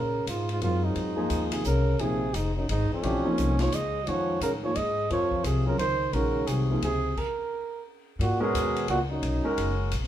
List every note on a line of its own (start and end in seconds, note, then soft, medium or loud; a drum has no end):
0.00 0.25 A#2 medium
0.00 0.28 C#3 medium
0.00 0.27 A#4 medium
0.27 0.60 G#2 medium
0.27 0.48 F4 medium
0.27 hi-hat pedal soft
0.27 ride medium
0.31 0.49 G#2 medium
0.49 0.62 G#2 medium
0.49 0.62 F4 medium
0.49 ride soft
0.61 0.95 F#2 medium
0.61 1.13 F#3 soft
0.61 1.13 C4 soft
0.61 1.13 F4 soft
0.61 0.86 F4 medium
0.61 1.13 A#4 soft
0.61 ride soft
0.65 0.87 G#2 medium
0.84 1.55 G#2 medium
0.84 1.55 D#4 medium
0.95 1.29 F2 medium
0.95 ride soft
1.16 1.62 F3 medium
1.16 1.61 A#3 medium
1.16 1.62 D#4 soft
1.16 1.62 G#4 medium
1.30 1.63 D#2 medium
1.30 hi-hat pedal soft
1.30 ride medium
1.52 1.64 C3 medium
1.52 1.65 G#4 medium
1.52 ride medium
1.64 1.98 C2 medium
1.64 2.00 C#3 medium
1.64 2.02 A#4 medium
1.64 hi-hat pedal medium
1.99 2.36 C3 medium
1.99 2.19 F3 soft
1.99 2.19 A#3 soft
1.99 2.19 D#4 soft
1.99 2.19 G#4 medium
1.99 2.36 G#4 medium
1.99 ride soft
2.34 2.67 F1 medium
2.34 2.55 G#2 medium
2.34 2.56 D#4 medium
2.34 hi-hat pedal soft
2.34 ride medium
2.55 2.67 F#2 medium
2.55 2.68 D#4 medium
2.69 2.89 G#1 medium
2.69 2.89 G#2 medium
2.69 2.90 D#4 medium
2.69 ride medium
2.91 3.60 F2 medium
2.91 3.63 C#4 medium
2.91 muted upright bass stroke soft
3.02 3.23 A#1 medium
3.02 3.22 E3 medium
3.02 3.22 A3 medium
3.02 3.22 D4 soft
3.02 3.22 G4 medium
3.02 ride soft
3.25 3.55 F3 medium
3.25 3.55 A#3 medium
3.25 3.55 D#4 medium
3.25 3.55 G#4 medium
3.38 3.71 C2 medium
3.38 hi-hat pedal medium
3.38 ride soft
3.59 3.73 F3 medium
3.59 3.71 F3 medium
3.59 3.71 A#3 soft
3.59 3.71 D#4 soft
3.59 3.71 F4 soft
3.59 3.76 C#5 medium
3.59 snare medium
3.59 ride soft
3.72 4.06 C#2 medium
3.72 4.07 G#3 medium
3.72 4.10 D#5 medium
3.72 hi-hat pedal medium
3.72 ride medium
4.06 4.40 F2 medium
4.06 4.58 D#3 soft
4.06 4.40 F3 medium
4.06 4.58 G#3 soft
4.06 4.59 C#4 soft
4.06 4.42 C#5 medium
4.06 4.58 F#5 soft
4.06 ride soft
4.40 4.74 A2 medium
4.40 4.51 C#3 medium
4.40 4.52 A#4 medium
4.40 hi-hat pedal medium
4.40 ride medium
4.63 4.74 F3 soft
4.63 4.78 F3 medium
4.63 4.74 A#3 soft
4.63 4.74 D#4 soft
4.63 4.74 G#4 medium
4.63 4.78 C#5 medium
4.76 5.09 G#2 medium
4.76 5.10 G#3 medium
4.76 5.10 D#5 loud
4.76 ride soft
5.10 5.43 F2 medium
5.10 5.62 C3 soft
5.10 5.61 F3 soft
5.10 5.46 F3 medium
5.10 5.62 F4 soft
5.10 5.62 A#4 soft
5.10 5.46 C#5 medium
5.10 ride soft
5.31 kick medium
5.44 5.77 C2 medium
5.44 5.66 C3 medium
5.44 5.66 G#4 medium
5.44 hi-hat pedal soft
5.44 ride medium
5.66 5.78 C#3 medium
5.66 5.78 F#3 soft
5.66 5.78 C4 soft
5.66 5.78 F4 soft
5.66 5.78 A#4 medium
5.66 5.79 A#4 medium
5.78 6.12 C#2 medium
5.78 6.14 D#3 medium
5.78 6.15 C5 loud
5.78 ride medium
6.13 6.46 A#1 medium
6.13 6.49 C#3 medium
6.13 6.65 D#3 soft
6.13 6.65 G#3 soft
6.13 6.65 C#4 soft
6.13 6.65 F#4 medium
6.13 6.49 A#4 medium
6.13 ride soft
6.46 6.80 C2 medium
6.46 6.82 C3 medium
6.46 6.82 G#4 medium
6.46 hi-hat pedal soft
6.46 ride medium
6.71 6.82 F3 soft
6.71 6.82 A#3 medium
6.71 6.82 D#4 soft
6.71 6.82 G#4 medium
6.82 7.16 C#2 medium
6.82 7.15 C3 medium
6.82 7.20 G#4 loud
6.82 ride medium
7.17 7.86 A#4 medium
7.17 kick medium
7.17 crash medium
8.19 8.53 G#2 medium
8.19 8.44 A#2 medium
8.19 8.42 F#4 medium
8.19 ride soft
8.40 8.89 B2 medium
8.40 8.85 G#3 medium
8.40 8.86 C#4 medium
8.40 8.86 F#4 medium
8.40 8.88 G#4 loud
8.40 8.86 A#4 medium
8.54 8.88 D#2 medium
8.54 hi-hat pedal medium
8.54 ride medium
8.76 ride soft
8.88 9.21 C#2 medium
8.88 9.00 A#2 medium
8.88 8.99 F#4 medium
8.88 ride medium
9.11 9.75 F#2 medium
9.11 9.75 D#4 medium
9.22 9.42 B1 medium
9.22 ride soft
9.44 9.89 G#3 medium
9.44 9.89 C#4 medium
9.44 9.89 F#4 medium
9.44 9.89 A#4 medium
9.58 9.91 F#1 medium
9.58 ride medium
9.91 10.07 A#1 medium
9.91 hi-hat pedal soft
9.91 ride medium
10.03 snare soft